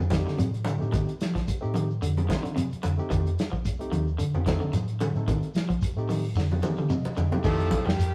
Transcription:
0.00 fingered electric bass F2, shekere
0.10 clean electric guitar D#3, tine electric piano A3 C4 D#4 G4, kick, snare, closed hi-hat, high conga, shekere
0.27 clean electric guitar D3, snare, shekere
0.38 fingered electric bass A2, clean electric guitar C3, closed hi-hat, high conga, shekere
0.54 closed hi-hat, shekere
0.65 clean electric guitar D3, closed hi-hat, high conga, shekere
0.79 fingered electric bass A2, tine electric piano A3 C4 D#4 G4, shekere
0.92 clean electric guitar D#3, kick, closed hi-hat, low conga, shekere
1.08 closed hi-hat, shekere
1.21 fingered electric bass F3, snare, closed hi-hat, shekere
1.35 clean electric guitar F3, kick, snare, closed hi-hat, shekere
1.48 muted fingered electric bass stroke, kick, closed hi-hat, shekere
1.61 fingered electric bass A2, tine electric piano A3 C4 D#4 G4, shekere
1.74 clean electric guitar D#3, closed hi-hat, high conga, shekere
1.90 shekere
2.02 fingered electric bass F2, clean electric guitar D3, closed hi-hat, shekere
2.17 closed hi-hat, high conga, low conga, shekere
2.29 clean electric guitar D#3, tine electric piano A3 C4 D#4 F4, kick, snare, closed hi-hat, high conga, shekere
2.43 clean electric guitar D3, fingered electric bass D3, closed hi-hat, shekere
2.56 clean electric guitar C3, closed hi-hat, high conga, shekere
2.71 muted fingered electric bass stroke, closed hi-hat, shekere
2.83 fingered electric bass F2, clean electric guitar D3, closed hi-hat, high conga, shekere
2.98 tine electric piano A3 C4 D#4 G4, shekere
3.10 fingered electric bass F2, clean electric guitar D#3, kick, closed hi-hat, low conga, shekere
3.26 closed hi-hat, shekere
3.38 snare, closed hi-hat, shekere
3.52 fingered electric bass C2, clean electric guitar F3, kick, shekere
3.65 kick, closed hi-hat, shekere
3.79 tine electric piano A3 C4 D#4 G4, closed hi-hat, shekere
3.92 fingered electric bass D#2, clean electric guitar D#3, closed hi-hat, high conga, shekere
4.07 shekere
4.18 clean electric guitar D3, closed hi-hat, shekere
4.34 fingered electric bass F2, low conga, shekere
4.46 clean electric guitar D#3, tine electric piano A3 C4 D#4 A4, kick, snare, closed hi-hat, high conga, shekere
4.60 clean electric guitar D3, shekere
4.73 fingered electric bass A2, muted clean electric guitar stroke, closed hi-hat, high conga, shekere
4.88 closed hi-hat, shekere
5.00 clean electric guitar D3, closed hi-hat, high conga, shekere
5.15 fingered electric bass A2, tine electric piano A3 C4 D#4 A4, shekere
5.28 clean electric guitar D#3, kick, closed hi-hat, low conga, shekere
5.43 closed hi-hat, shekere
5.54 fingered electric bass F3, snare, closed hi-hat, shekere
5.69 clean electric guitar F3, kick, closed hi-hat, shekere
5.82 muted fingered electric bass stroke, kick, closed hi-hat, shekere
5.96 fingered electric bass A2, tine electric piano A3 C4 D#4 G4, shekere
6.09 clean electric guitar D#3, open hi-hat, high conga, shekere
6.24 shekere
6.35 fingered electric bass F2, clean electric guitar D3, snare, shekere
6.51 high conga, low conga, shekere
6.62 clean electric guitar D#3, tine electric piano A3 C4 D#4 G4 F5, high tom, high conga, shekere
6.77 fingered electric bass D3, clean electric guitar D3, high tom, shekere
6.90 clean electric guitar C3, tine electric piano D#5, mid tom, high conga, shekere
7.04 muted fingered electric bass stroke, high conga, shekere
7.16 fingered electric bass F2, clean electric guitar D3, floor tom, high conga, shekere
7.31 tine electric piano A3 C4 D#4 G4, floor tom, low conga, shekere
7.44 fingered electric bass F2, baritone saxophone A2, clean electric guitar D#3, tenor saxophone F3, tine electric piano A3 C4 D#4 G4, alto saxophone A4, kick, crash, shekere
7.60 closed hi-hat
7.71 kick, closed hi-hat, high conga, shekere
7.85 fingered electric bass F2, baritone saxophone G2, tenor saxophone D#3, clean electric guitar F3, alto saxophone G4, snare, low conga
7.98 fingered electric bass F2, closed hi-hat, shekere

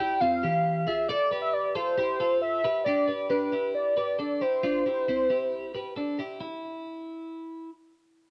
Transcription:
Already playing: soft synth lead G5
0.00 clean electric guitar E4 G4
0.20 clean electric guitar C4 F4, soft synth lead F5
0.43 clean electric guitar E3 G4
0.87 clean electric guitar F4 G#4, soft synth lead E5
1.09 clean electric guitar A4 D5, soft synth lead D5
1.31 clean electric guitar G4 B4
1.42 soft synth lead E5
1.53 soft synth lead D5
1.75 clean electric guitar F4 A4, soft synth lead C5
1.98 clean electric guitar E4 G4
2.20 clean electric guitar F4 A4
2.42 soft synth lead E5
2.64 clean electric guitar G4 B4
2.84 clean electric guitar D4 G4, soft synth lead D5
3.08 clean electric guitar G4 B4
3.30 clean electric guitar D4 G4, soft synth lead B4
3.52 clean electric guitar E4 G4
3.75 soft synth lead D5
3.97 clean electric guitar G4 B4
4.19 clean electric guitar D4 A4
4.41 clean electric guitar E4 G4, soft synth lead C5
4.63 clean electric guitar D4 F4
4.86 clean electric guitar E4 G4
5.08 clean electric guitar C4 E4
5.30 clean electric guitar E4 G4
5.75 clean electric guitar G4 B4
5.96 clean electric guitar D4 A4
6.19 clean electric guitar E4 G4
6.41 clean electric guitar E4

